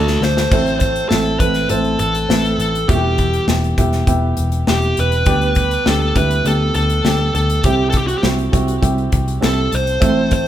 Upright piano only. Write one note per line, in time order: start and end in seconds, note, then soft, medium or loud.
0.00 0.18 D3 soft
0.00 0.53 A3 medium
0.00 0.53 D4 medium
0.00 0.54 F#4 medium
0.00 0.53 A4 medium
0.00 0.48 D5 medium
0.53 1.37 A2 medium
0.53 0.96 A3 medium
0.53 0.96 C4 medium
0.53 0.96 E4 medium
0.53 0.96 A4 medium
1.12 1.33 A3 medium
1.12 1.34 C4 medium
1.12 1.34 E4 medium
1.12 1.34 A4 medium
1.41 1.63 A3 medium
1.41 1.63 C4 medium
1.41 1.63 E4 medium
1.41 1.63 A4 medium
1.70 2.15 A3 medium
1.70 2.14 C4 medium
1.70 2.15 E4 medium
1.70 2.15 C5 medium
2.29 2.74 A3 medium
2.29 2.73 C4 medium
2.29 2.74 E4 medium
2.29 2.74 B4 medium
2.88 3.74 E3 medium
2.88 3.33 G3 medium
2.88 3.33 B3 medium
2.88 3.33 E4 medium
2.88 2.95 F#4 medium
2.95 3.36 G4 medium
3.48 3.70 G3 medium
3.48 3.71 B3 medium
3.48 3.71 E4 medium
3.48 3.71 G4 medium
3.78 4.00 G3 medium
3.78 4.00 B3 medium
3.78 4.00 E4 medium
3.78 4.00 G4 medium
4.08 4.52 G3 medium
4.08 4.52 B3 medium
4.08 4.52 E4 medium
4.08 4.52 G4 medium
4.67 5.11 G3 medium
4.67 5.11 B3 medium
4.67 5.11 E4 medium
4.67 5.11 G4 medium
5.26 6.12 D3 medium
5.26 5.71 G3 medium
5.26 5.71 B3 medium
5.26 5.71 D4 medium
5.26 5.71 G4 medium
5.86 6.08 G3 medium
5.86 6.08 B3 medium
5.86 6.09 D4 medium
5.86 6.09 G4 medium
6.15 6.38 G3 medium
6.15 6.38 B3 medium
6.15 6.38 D4 medium
6.15 6.38 E4 medium
6.46 6.90 G3 medium
6.46 6.90 B3 medium
6.46 6.90 D4 medium
6.46 6.90 G4 medium
7.06 7.49 G3 medium
7.06 7.49 B3 medium
7.06 7.50 D4 medium
7.06 7.50 G4 medium
7.65 8.50 C3 medium
7.65 8.09 G3 medium
7.65 8.09 C4 medium
7.65 8.09 E4 medium
7.65 8.09 G4 medium
8.23 8.46 G3 medium
8.23 8.46 C4 medium
8.23 8.46 E4 medium
8.23 8.46 F#4 medium
8.52 8.75 G3 medium
8.52 8.75 C4 medium
8.52 8.75 E4 medium
8.52 8.75 F#4 medium
8.82 9.27 G3 medium
8.82 9.27 C4 medium
8.82 9.27 E4 medium
8.82 9.27 G4 medium
9.41 9.86 G3 medium
9.41 9.86 C4 medium
9.41 9.86 E4 medium
9.41 9.86 A4 medium
10.00 10.48 A2 medium
10.00 10.46 A3 medium
10.00 10.45 C4 medium
10.00 10.46 E4 medium
10.00 10.46 A4 medium